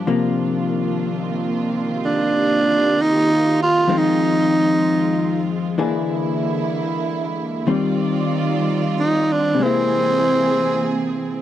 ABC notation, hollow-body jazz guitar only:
X:1
M:4/4
L:1/8
Q:"Swing" 1/4=63
K:Cm
V:1 name="Hollow-body jazz guitar" clef=bass
[C,F,B,]8 | [F,,E,A,C]4 [=E,^A,D^G]4 | [E,G,C]4 [C,A,B,=E]4 |]